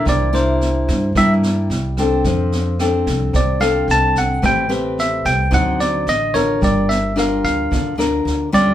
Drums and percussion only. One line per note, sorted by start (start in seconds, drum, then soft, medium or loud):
0.06 kick medium
0.06 cross-stick medium
0.06 snare soft
0.34 snare soft
0.61 snare soft
0.88 kick soft
0.88 snare soft
1.15 kick medium
1.15 cross-stick medium
1.15 snare soft
1.43 snare soft
1.70 snare soft
1.97 kick soft
1.97 cross-stick medium
1.97 snare soft
2.24 kick medium
2.24 snare soft
2.52 snare soft
2.79 cross-stick medium
2.79 snare soft
3.07 kick soft
3.07 snare soft
3.34 kick medium
3.34 snare soft
3.61 cross-stick medium
3.61 snare soft
3.89 snare soft
4.16 kick soft
4.16 snare soft
4.43 kick medium
4.43 cross-stick medium
4.43 snare soft
4.71 snare soft
4.99 snare soft
5.25 kick soft
5.25 snare soft
5.52 kick medium
5.52 cross-stick medium
5.52 snare soft
5.80 snare soft
6.07 snare soft
6.34 kick soft
6.34 cross-stick medium
6.34 snare soft
6.62 kick medium
6.62 snare soft
6.90 snare soft
7.18 cross-stick medium
7.18 snare soft
7.44 kick soft
7.44 snare soft
7.72 kick medium
7.72 snare soft
7.99 cross-stick medium
7.99 snare soft
8.27 snare soft
8.53 kick soft
8.53 snare soft